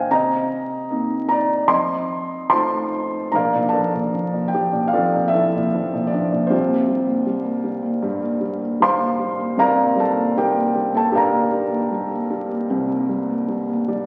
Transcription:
Already playing: A#3 D4 F4 A#4 C5 D#5 F5 G5 G#5
0.10 C3 D#5 A#5
0.90 A#3 C4 D#4
1.29 D5 A#5
1.68 F2 D#5 C6
2.50 A3 D#4 F4 C5 A5 C6
3.32 A#1 A#2 A#4 D5 F5 A#5
3.54 A#2
3.69 A5
3.73 F3 A4 D5
3.93 A#2
4.14 F3
4.33 A#2
4.48 G5
4.54 F3 G4
4.72 A#2
4.88 F5
4.93 F2 F3 F4 A4 D5
5.14 A#2
5.28 E5
5.33 F3 E4 A4
5.55 A#2
5.74 F3
5.94 A#2
6.07 D5
6.12 F3 D4
6.32 A#2
6.47 C2 C3 C4 F4 G4 C5
6.70 A#3
6.88 G3
7.07 A#3
7.26 G3
7.44 A#3
7.64 G3
7.83 A#3
8.02 G2 G3
8.22 A#3
8.41 G3
8.61 A#3
8.80 G3 C5 F5 C6
8.99 A#3
9.19 G3
9.38 A#3
9.57 C2 C3 A#4 D5 F5 A#5
9.78 A#3
9.96 G3 A4 A5
10.17 A#3
10.36 G3 G4 A#4 G5
10.56 A#3
10.75 G3
10.93 A#3 A4
10.97 A5
11.12 G2 G3 A#4 D5 F5
11.17 A#5
11.31 A#3
11.52 G3
11.70 A#3
11.91 G3
12.11 A#3
12.31 G3
12.49 A#3
12.70 C2 C3
12.88 A#3
13.09 G3
13.30 A#3
13.48 G3
13.69 A#3
13.88 G3 D5

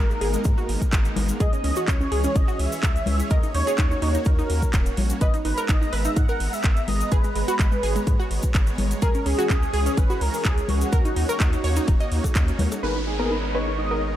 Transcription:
Already playing: G#1 G#3 A#3 B3 D#4 A#4
0.10 G#3, cabasa
0.21 G#1 G#4, open hi-hat
0.34 G#3, closed hi-hat, cabasa
0.44 G#2 G#3, kick, closed hi-hat, cabasa
0.58 F#4, cabasa
0.69 G#1, open hi-hat
0.82 kick, closed hi-hat, cabasa
0.93 G#1, kick, clap, closed hi-hat, cabasa
1.05 closed hi-hat, cabasa
1.16 G#1, open hi-hat, high conga
1.29 closed hi-hat, cabasa
1.40 C#2 E3 C#4 G#4 C#5 D#5, kick, closed hi-hat, cabasa
1.53 C#4, closed hi-hat, cabasa
1.64 C#2 C#4, open hi-hat
1.76 F#4, closed hi-hat, cabasa
1.88 C#2 C#4 C#5, kick, clap, closed hi-hat, cabasa
2.00 C#4, cabasa
2.12 C#2 G#4, open hi-hat
2.24 C#4, closed hi-hat, cabasa
2.35 G#1 C#4 D#5, kick, closed hi-hat, cabasa
2.48 F#4, cabasa
2.59 C#2 E5, open hi-hat
2.72 open hi-hat, cabasa
2.83 C#2, kick, clap, closed hi-hat, cabasa
2.96 closed hi-hat, cabasa
3.06 C#2, open hi-hat, high conga
3.19 closed hi-hat, cabasa
3.30 D#2 A#3 F#4 A#4 D#5, kick, closed hi-hat, cabasa
3.43 D#4, closed hi-hat, cabasa
3.54 D#2 D#4 C#5, open hi-hat
3.67 G#4, closed hi-hat, cabasa
3.78 D#2 D#4, kick, clap, closed hi-hat, cabasa
3.91 D#4, cabasa
4.02 D#2 D#4, open hi-hat
4.14 D#4, closed hi-hat, cabasa
4.25 D#2 D#4 A#4, kick, closed hi-hat, cabasa
4.39 D#4, cabasa
4.50 D#2, open hi-hat
4.62 kick, closed hi-hat, cabasa
4.73 D#1, kick, clap, closed hi-hat, cabasa
4.86 closed hi-hat, cabasa
4.97 A#1, open hi-hat, high conga
5.10 closed hi-hat, cabasa
5.21 G#1 G#3 B3 B4 D#5 A#5, kick, closed hi-hat, cabasa
5.34 D#4, closed hi-hat, cabasa
5.45 G#1 D#4 B4, open hi-hat
5.58 A#4, closed hi-hat, cabasa
5.69 G#1 D#4 D#5, kick, clap, closed hi-hat, cabasa
5.82 D#4, cabasa
5.92 G#1 B4 E5, open hi-hat
6.05 D#4, closed hi-hat, cabasa
6.16 G#2 D#4 F#5, kick, closed hi-hat, cabasa
6.29 A#4, cabasa
6.40 G#1, open hi-hat
6.53 E5, open hi-hat, cabasa
6.63 G#1, kick, clap, closed hi-hat, cabasa
6.77 closed hi-hat, cabasa
6.88 G#1 D#5, open hi-hat, high conga
7.00 closed hi-hat, cabasa
7.12 G#1 G#4 B4 C#5, kick, closed hi-hat, cabasa
7.24 G#3, closed hi-hat, cabasa
7.35 G#1 G#3, open hi-hat
7.48 F#4, closed hi-hat, cabasa
7.59 G#1 G#3, kick, clap, closed hi-hat, cabasa
7.72 G#3, cabasa
7.83 G#1 G#4, open hi-hat
7.96 G#3, closed hi-hat, cabasa
8.07 G#2 G#3, kick, closed hi-hat, cabasa
8.20 F#4, cabasa
8.31 G#1, open hi-hat
8.43 kick, closed hi-hat, cabasa
8.54 G#1, kick, clap, closed hi-hat, cabasa
8.67 closed hi-hat, cabasa
8.78 G#1, open hi-hat, high conga
8.91 closed hi-hat, cabasa
9.02 C#2 E3 C#4 G#4 A#4, kick, closed hi-hat, cabasa
9.14 C#4, closed hi-hat, cabasa
9.26 C#2 C#4 G#4, open hi-hat
9.39 F#4, closed hi-hat, cabasa
9.50 C#2 C#4, kick, clap, closed hi-hat, cabasa
9.62 C#4, cabasa
9.73 C#2 G#4, open hi-hat
9.86 C#4, closed hi-hat, cabasa
9.97 G#1 C#4 B4, kick, closed hi-hat, cabasa
10.10 F#4, cabasa
10.21 C#2 A#4, open hi-hat
10.34 open hi-hat, cabasa
10.45 C#2 G#4, kick, clap, closed hi-hat, cabasa
10.58 closed hi-hat, cabasa
10.68 C#2 F#4, open hi-hat, high conga
10.81 closed hi-hat, cabasa
10.92 D#2 A#3 D#4 F#4 A#4 C#5, kick, closed hi-hat, cabasa
11.05 D#4, closed hi-hat, cabasa
11.16 D#2 D#4, open hi-hat
11.29 A#4, closed hi-hat, cabasa
11.40 D#2 D#4, kick, clap, closed hi-hat, cabasa
11.53 D#4, closed hi-hat, cabasa
11.64 D#2 C#5, open hi-hat
11.76 D#4, closed hi-hat, cabasa
11.88 D#1 D#4, kick, closed hi-hat, cabasa
12.00 D#5, closed hi-hat, cabasa
12.12 D#2, open hi-hat
12.24 kick, closed hi-hat, cowbell, cabasa
12.35 D#2, kick, clap, closed hi-hat, cabasa
12.48 closed hi-hat, cabasa
12.59 D#2, open hi-hat, high conga
12.72 closed hi-hat, cowbell, cabasa
12.83 G#1 G#3 B3 D#4 G#4 A#4 B4 C#5 C#6, downlifter
12.96 D#4
13.07 D#4 G#4
13.20 B3 D#4 G#4 A#4
13.31 D#4 B4
13.43 D#4
13.54 B3 D#4 G#4 B4 C#5
13.67 D#4
13.78 D#4 D#5
13.91 B3 D#4 G#4 A#4

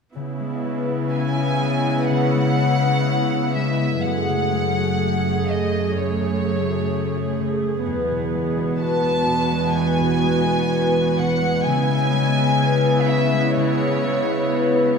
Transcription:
0.15 C#3 B3 E4
0.40 G#3
0.65 B3
0.89 E4
1.13 G#5
1.37 E4
1.61 G#3
1.85 B3
2.09 C#3 F#5
2.34 G#3
2.59 B3
2.83 E4
3.32 E4
3.55 G#3 E5
3.80 B3
4.04 F#2 A3 G#4 F#5
4.29 C#3
4.52 A3
4.77 F#4
5.24 F#4
5.48 C#3 D#5
5.72 A3
5.96 F#2 C#5
6.20 C#3
6.44 A3
6.68 F#4
7.15 F#4
7.40 C#3
7.63 A3
7.87 E2 B3
8.11 B2
8.34 G#3
8.57 F#4
8.81 F#4 B4 A5
9.05 F#4
9.28 B2
9.51 G#3
9.75 E2 G#5
9.99 B2
10.23 G#3
10.46 F#4
10.71 B4
10.94 F#4
11.18 B2 F#5
11.42 G#3
11.65 C#3 B3 E4 G#5
11.89 C#4
12.14 G#3
12.37 E4
12.61 B4
12.85 E4
13.08 C#4 E5
13.33 G#3
13.56 C#3 C#5
13.81 C#4
14.05 G#3
14.29 E4
14.52 B4
14.76 E4

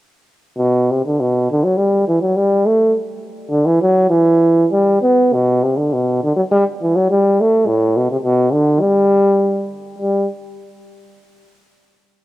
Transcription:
0.58 B2
0.91 C3
1.06 D3
1.20 B2
1.51 D3
1.64 F#3
1.77 G3
2.08 E3
2.22 F#3
2.36 G3
2.66 A3
3.50 D3
3.66 E3
3.82 F#3
4.10 E3
4.72 G3
5.02 B3
5.34 B2
5.63 C3
5.77 D3
5.93 B2
6.23 D3
6.36 F#3
6.51 G3
6.82 E3
6.96 F#3
7.10 G3
7.41 A3
7.67 A2
7.97 B2
8.11 C3
8.23 B2
8.53 D3
8.81 G3
9.99 G3

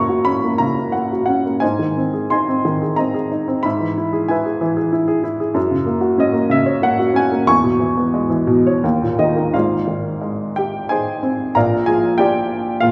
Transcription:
Already playing: F#2 C#3 A#3 C#5 F#5 A#5 C#6
0.09 F#4
0.25 C#4 B5
0.44 A#3
0.58 C#3 A#5
0.79 A#4
0.92 A#3 F#5
1.12 F#4
1.26 C#4 F#5
1.45 A#3
1.60 G#2 C5 D#5 G#5
1.79 D#3
1.97 C4
2.14 G#4
2.30 D#4 D#5 G#5 C6
2.48 C4
2.65 D#3
2.82 G#4
2.96 C4 D#5 A#5
3.14 G#4
3.32 D#4
3.48 C4
3.63 G#2 E5 B5
3.81 E3
3.98 E4
4.13 G#4
4.28 E4 B4 E5 G#5
4.45 G#4
4.61 E3
4.77 G#4
4.92 E4
5.08 G#4
5.24 E4
5.40 G#4
5.54 F#2
5.71 C#3
5.86 A#3
6.01 F#4
6.18 C#4 D#5
6.33 A#3
6.49 C#3 E5
6.66 C#5
6.82 A#3 F#5
6.99 F#4
7.14 C#4 G#5
7.32 A#3
7.47 E2 G#5 C#6
7.64 B2
7.80 E3
7.97 B3
8.14 G#3
8.30 E3
8.47 B2
8.67 C#5
8.84 D#2
9.02 A#2
9.19 D#3 D#4 D#5
9.36 A#3
9.53 G#1 G#2 F4 G#4 C5 F5
9.87 D#3
10.21 G#3
10.56 G4 G5
10.89 D#4 G#4 C5 G#5
11.23 C4
11.55 A#1 A#2 A#4 D5 F5 A#5
11.86 F3 G#4 G#5
12.18 F4 G4 D5 G5
12.80 A#2 F4 F5

